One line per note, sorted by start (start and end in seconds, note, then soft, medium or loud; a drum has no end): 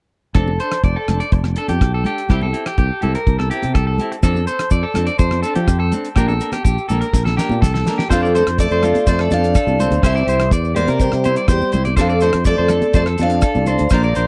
0.35 0.58 F1 medium
0.35 0.50 C4 medium
0.35 0.51 D4 medium
0.35 0.59 A4 medium
0.35 muted clean electric guitar stroke medium
0.35 kick medium
0.35 cross-stick soft
0.35 closed hi-hat soft
0.35 low conga soft
0.48 high conga medium
0.60 0.76 D4 soft
0.60 0.75 A4 soft
0.60 0.83 C5 medium
0.60 closed hi-hat soft
0.72 cross-stick medium
0.72 closed hi-hat soft
0.83 0.95 F1 medium
0.83 0.96 D5 medium
0.83 kick medium
0.83 closed hi-hat soft
0.96 1.20 A4 medium
1.08 1.20 F1 medium
1.08 1.24 D4 soft
1.08 1.23 A4 medium
1.08 cross-stick medium
1.08 closed hi-hat soft
1.08 low conga medium
1.20 1.32 D5 medium
1.20 closed hi-hat soft
1.32 1.55 F1 medium
1.32 muted clean electric guitar stroke medium
1.32 kick medium
1.32 closed hi-hat soft
1.44 cross-stick medium
1.44 high conga medium
1.56 1.73 D4 soft
1.56 1.72 A4 medium
1.56 1.69 A4 medium
1.56 closed hi-hat soft
1.68 1.80 F2 medium
1.68 1.92 G4 medium
1.68 closed hi-hat soft
1.68 high conga medium
1.81 2.04 B1 medium
1.81 kick medium
1.81 cross-stick medium
1.81 closed hi-hat soft
1.94 2.06 A4 medium
2.04 2.21 D4 soft
2.04 2.29 G4 medium
2.04 2.20 A4 soft
2.04 closed hi-hat soft
2.04 low conga medium
2.18 closed hi-hat soft
2.29 2.52 C2 medium
2.29 2.45 G3 medium
2.29 2.45 C4 medium
2.29 2.45 E4 medium
2.29 2.42 G4 medium
2.29 2.46 G4 medium
2.29 kick medium
2.29 cross-stick medium
2.29 closed hi-hat soft
2.29 low conga medium
2.41 2.66 A4 medium
2.41 high conga medium
2.53 2.69 C4 soft
2.53 2.69 E4 medium
2.53 2.68 G4 soft
2.53 closed hi-hat soft
2.66 2.77 G4 medium
2.66 cross-stick medium
2.66 closed hi-hat soft
2.78 2.90 C2 medium
2.78 3.02 G4 medium
2.78 kick medium
2.78 closed hi-hat soft
3.01 3.15 C2 medium
3.01 3.18 C4 soft
3.01 3.17 E4 soft
3.01 3.17 G4 soft
3.01 3.15 A4 medium
3.01 closed hi-hat soft
3.01 low conga medium
3.15 3.38 A#4 medium
3.15 closed hi-hat soft
3.27 3.49 C2 medium
3.27 kick medium
3.27 closed hi-hat soft
3.39 3.50 A4 medium
3.39 cross-stick medium
3.39 high conga medium
3.50 3.67 C4 soft
3.50 3.66 E4 soft
3.50 3.65 G4 medium
3.50 3.74 G4 medium
3.50 closed hi-hat soft
3.62 3.74 C3 medium
3.62 closed hi-hat soft
3.62 high conga medium
3.75 3.98 C2 medium
3.75 3.86 A4 medium
3.75 kick medium
3.75 cross-stick medium
3.75 closed hi-hat soft
3.87 4.10 A4 medium
3.98 4.15 C4 soft
3.98 4.15 E4 soft
3.98 4.15 G4 medium
3.98 closed hi-hat soft
3.98 low conga medium
4.12 muted clean electric guitar stroke medium
4.12 closed hi-hat soft
4.23 4.46 F2 medium
4.23 4.39 F3 medium
4.23 4.39 C4 medium
4.23 4.39 D4 medium
4.23 4.47 A4 medium
4.23 4.39 A4 medium
4.23 kick medium
4.23 cross-stick medium
4.23 closed hi-hat soft
4.23 low conga medium
4.23 maracas medium
4.35 high conga medium
4.35 maracas soft
4.47 4.64 C4 soft
4.47 4.63 A4 soft
4.47 4.71 C5 medium
4.47 muted clean electric guitar stroke soft
4.47 closed hi-hat soft
4.47 maracas medium
4.59 cross-stick medium
4.59 closed hi-hat soft
4.59 maracas soft
4.71 4.83 F2 medium
4.71 4.84 D5 medium
4.71 kick medium
4.71 closed hi-hat soft
4.71 maracas medium
4.83 5.07 A4 medium
4.94 5.08 F2 medium
4.94 5.12 C4 soft
4.94 5.12 D4 medium
4.94 5.11 A4 medium
4.94 cross-stick medium
4.94 closed hi-hat soft
4.94 low conga medium
4.94 maracas soft
5.07 5.18 D5 medium
5.07 closed hi-hat soft
5.07 maracas soft
5.19 5.42 F2 medium
5.19 5.42 C5 medium
5.19 kick medium
5.19 closed hi-hat soft
5.19 maracas medium
5.31 cross-stick medium
5.31 high conga soft
5.31 maracas soft
5.43 5.60 C4 medium
5.43 5.60 D4 medium
5.43 5.55 A4 medium
5.43 5.59 A4 medium
5.43 closed hi-hat medium
5.43 maracas medium
5.55 5.67 F3 medium
5.55 5.79 G4 medium
5.55 closed hi-hat soft
5.55 high conga medium
5.68 5.91 F2 medium
5.68 kick medium
5.68 cross-stick medium
5.68 closed hi-hat soft
5.68 maracas medium
5.80 5.92 A4 medium
5.92 6.08 C4 medium
5.92 6.08 D4 medium
5.92 6.07 A4 medium
5.92 closed hi-hat soft
5.92 low conga medium
5.92 maracas medium
6.05 closed hi-hat soft
6.16 6.39 A#1 medium
6.16 6.31 F3 medium
6.16 6.32 A#3 medium
6.16 6.32 D4 medium
6.16 6.28 G4 medium
6.16 6.32 A#4 medium
6.16 kick medium
6.16 cross-stick medium
6.16 closed hi-hat soft
6.16 low conga soft
6.16 maracas medium
6.28 6.52 A4 medium
6.28 high conga medium
6.28 maracas soft
6.41 6.57 A#3 soft
6.41 6.56 D4 soft
6.41 6.56 A#4 soft
6.41 closed hi-hat soft
6.41 maracas medium
6.52 6.63 G4 medium
6.52 cross-stick medium
6.52 closed hi-hat soft
6.52 high conga medium
6.52 maracas soft
6.64 6.77 A#1 medium
6.64 6.88 G4 medium
6.64 kick medium
6.64 closed hi-hat soft
6.64 maracas medium
6.78 maracas soft
6.89 7.01 A#1 medium
6.89 7.06 D4 soft
6.89 7.00 A4 medium
6.89 7.05 A#4 soft
6.89 closed hi-hat soft
6.89 low conga medium
6.89 maracas medium
6.93 7.06 A#3 soft
7.01 7.24 A#4 medium
7.01 closed hi-hat soft
7.01 maracas soft
7.13 7.36 A#1 medium
7.13 kick medium
7.13 snare soft
7.13 maracas medium
7.25 7.37 A4 medium
7.25 snare soft
7.25 high conga medium
7.25 maracas soft
7.37 7.54 A#3 soft
7.37 7.54 D4 medium
7.37 7.61 G4 medium
7.37 7.53 A#4 medium
7.37 snare medium
7.37 maracas medium
7.49 7.62 A#2 medium
7.49 high conga medium
7.49 maracas soft
7.62 7.85 C2 medium
7.62 7.73 A4 medium
7.62 kick medium
7.62 snare medium
7.62 maracas medium
7.74 7.97 A4 medium
7.74 snare soft
7.74 maracas soft
7.85 8.02 A#4 medium
7.85 snare medium
7.85 low conga medium
7.85 maracas medium
7.90 8.03 A#3 soft
7.90 8.03 D4 medium
7.98 8.10 G4 medium
7.98 snare medium
7.98 maracas soft
8.10 8.44 F2 loud
8.10 8.34 F3 medium
8.10 8.26 F3 medium
8.10 8.26 C4 medium
8.10 8.26 D4 medium
8.10 8.34 F4 medium
8.10 8.34 A4 medium
8.10 8.22 C5 medium
8.10 muted clean electric guitar stroke medium
8.10 kick medium
8.10 cross-stick medium
8.10 closed hi-hat soft
8.10 maracas medium
8.23 8.34 D5 medium
8.23 maracas soft
8.35 8.47 A3 medium
8.35 8.51 C4 soft
8.35 8.51 D4 soft
8.35 8.42 A4 medium
8.35 8.50 A4 medium
8.35 8.58 C5 medium
8.35 8.43 C5 medium
8.35 closed hi-hat soft
8.35 maracas medium
8.47 8.69 F2 medium
8.47 cross-stick medium
8.47 closed hi-hat medium
8.58 9.04 A4 medium
8.58 9.07 D5 loud
8.58 8.71 D5 medium
8.58 kick medium
8.58 closed hi-hat soft
8.58 maracas medium
8.63 9.06 A3 medium
8.71 8.94 F2 medium
8.71 8.83 C5 medium
8.71 maracas soft
8.83 8.99 C4 soft
8.83 8.98 D4 soft
8.83 9.07 F4 medium
8.83 8.98 A4 soft
8.83 cross-stick medium
8.83 closed hi-hat soft
8.83 low conga medium
8.83 maracas medium
8.94 closed hi-hat soft
8.94 high conga medium
8.94 maracas soft
9.07 9.29 F2 medium
9.07 9.31 A3 medium
9.07 9.30 A4 medium
9.07 9.19 C5 medium
9.07 9.30 D5 medium
9.07 kick medium
9.07 closed hi-hat soft
9.07 maracas medium
9.18 9.43 A4 medium
9.18 cross-stick medium
9.18 maracas soft
9.31 9.54 F2 medium
9.31 9.47 C4 soft
9.31 10.01 D4 medium
9.31 9.47 D4 soft
9.31 9.46 A4 medium
9.31 10.00 D5 medium
9.31 10.01 F5 medium
9.31 closed hi-hat medium
9.31 high conga medium
9.31 maracas medium
9.44 closed hi-hat medium
9.44 maracas soft
9.55 9.79 A4 medium
9.55 kick medium
9.55 cross-stick medium
9.55 closed hi-hat soft
9.55 maracas medium
9.67 9.90 C2 medium
9.67 high conga medium
9.67 maracas soft
9.79 9.95 C4 soft
9.79 9.95 D4 soft
9.79 9.95 A4 medium
9.79 10.03 C5 medium
9.79 closed hi-hat soft
9.79 low conga medium
9.79 maracas medium
9.91 10.02 D2 medium
9.91 closed hi-hat soft
9.91 high conga medium
9.91 maracas soft
10.02 10.26 C2 loud
10.02 10.18 C4 medium
10.02 10.18 E4 medium
10.02 10.19 G4 medium
10.02 10.49 C5 medium
10.02 10.15 C5 medium
10.02 kick medium
10.02 cross-stick medium
10.02 closed hi-hat soft
10.02 maracas medium
10.06 10.50 C4 medium
10.06 10.50 E5 medium
10.16 10.27 D5 medium
10.16 maracas soft
10.27 10.50 C2 medium
10.27 10.43 E4 soft
10.27 10.42 G4 medium
10.27 10.51 C5 medium
10.27 closed hi-hat soft
10.27 maracas medium
10.40 cross-stick medium
10.40 closed hi-hat medium
10.51 10.86 E2 medium
10.51 10.76 D5 medium
10.51 kick medium
10.51 closed hi-hat soft
10.51 maracas medium
10.65 maracas soft
10.75 10.98 A#3 medium
10.75 10.92 E4 soft
10.75 10.90 G4 medium
10.75 10.99 A#4 medium
10.75 10.88 C5 medium
10.75 10.99 D5 medium
10.75 closed hi-hat soft
10.75 low conga medium
10.75 maracas medium
10.88 11.11 C3 medium
10.88 11.12 A#4 medium
10.88 closed hi-hat medium
10.88 high conga medium
10.88 maracas soft
10.99 11.45 G3 medium
10.99 11.47 G4 medium
10.99 11.49 C5 medium
10.99 kick medium
10.99 closed hi-hat soft
10.99 maracas medium
11.12 11.35 C3 medium
11.12 cross-stick medium
11.12 maracas soft
11.24 11.40 E4 medium
11.24 11.39 G4 medium
11.24 11.37 C5 medium
11.24 closed hi-hat soft
11.24 high conga medium
11.24 maracas medium
11.36 11.48 D5 medium
11.36 closed hi-hat soft
11.36 maracas soft
11.48 11.60 E2 medium
11.48 11.83 G3 medium
11.48 11.84 G4 medium
11.48 11.72 C5 medium
11.48 11.84 C5 medium
11.48 kick medium
11.48 cross-stick medium
11.48 closed hi-hat soft
11.48 maracas medium
11.61 high conga medium
11.61 maracas soft
11.72 11.96 C2 medium
11.72 11.89 E4 soft
11.72 11.85 C5 medium
11.72 muted clean electric guitar stroke medium
11.72 closed hi-hat soft
11.72 low conga medium
11.72 maracas medium
11.85 11.96 D5 medium
11.85 closed hi-hat soft
11.85 high conga medium
11.85 maracas soft
11.96 12.31 F2 loud
11.96 12.12 F3 medium
11.96 12.20 F3 medium
11.96 12.12 C4 medium
11.96 12.12 D4 medium
11.96 12.13 A4 medium
11.96 12.21 A4 medium
11.96 12.09 C5 medium
11.96 kick medium
11.96 cross-stick medium
11.96 closed hi-hat soft
11.96 maracas medium
12.01 12.22 F4 medium
12.09 12.21 D5 medium
12.09 maracas soft
12.20 12.33 A3 medium
12.20 12.37 C4 soft
12.20 12.37 D4 soft
12.20 12.36 A4 soft
12.20 12.29 A4 medium
12.20 12.45 C5 medium
12.20 12.30 C5 medium
12.20 closed hi-hat soft
12.20 maracas medium
12.33 12.57 F2 medium
12.33 cross-stick medium
12.33 closed hi-hat medium
12.44 12.92 A3 medium
12.44 12.92 A4 medium
12.44 12.57 D5 medium
12.44 12.95 D5 loud
12.44 kick medium
12.44 closed hi-hat soft
12.44 maracas medium
12.58 12.81 F2 medium
12.58 12.69 C5 medium
12.68 12.86 D4 soft
12.68 12.93 A4 medium
12.68 12.85 A4 soft
12.68 cross-stick medium
12.68 closed hi-hat soft
12.68 low conga medium
12.68 maracas medium
12.73 12.86 C4 soft
12.82 closed hi-hat soft
12.82 high conga medium
12.82 maracas soft
12.93 13.17 F2 loud
12.93 13.07 A3 medium
12.93 13.02 A4 medium
12.93 13.06 C5 medium
12.93 13.02 D5 medium
12.93 kick medium
12.93 closed hi-hat soft
12.93 maracas medium
13.06 13.30 A4 medium
13.06 cross-stick medium
13.06 maracas soft
13.18 13.42 F2 medium
13.18 13.34 D4 soft
13.18 13.34 A4 medium
13.18 13.89 D5 medium
13.18 closed hi-hat medium
13.18 high conga medium
13.18 maracas medium
13.22 13.35 C4 soft
13.22 13.89 D4 medium
13.22 13.89 F5 medium
13.30 closed hi-hat soft
13.30 maracas soft
13.42 13.66 A4 medium
13.42 kick medium
13.42 cross-stick medium
13.42 closed hi-hat soft
13.42 maracas medium
13.55 13.78 C2 medium
13.55 high conga medium
13.55 maracas soft
13.66 13.83 C4 soft
13.66 13.83 D4 soft
13.66 13.82 A4 medium
13.66 13.90 C5 medium
13.66 closed hi-hat soft
13.66 low conga medium
13.66 maracas medium
13.78 13.90 D2 medium
13.78 closed hi-hat soft
13.78 high conga medium
13.78 maracas soft
13.90 14.13 A#1 loud
13.90 14.06 F3 medium
13.90 14.06 A#3 medium
13.90 14.06 D4 medium
13.90 14.27 A#4 medium
13.90 14.07 A#4 medium
13.90 14.03 C5 medium
13.90 kick medium
13.90 cross-stick medium
13.90 closed hi-hat soft
13.90 maracas medium
13.94 14.27 A#3 medium
13.94 14.27 D5 medium
14.03 14.15 D5 medium
14.03 maracas soft
14.15 14.27 A#1 medium
14.15 14.27 A#3 soft
14.15 14.27 D4 soft
14.15 14.27 A#4 soft
14.15 14.27 C5 medium
14.15 closed hi-hat soft
14.15 maracas medium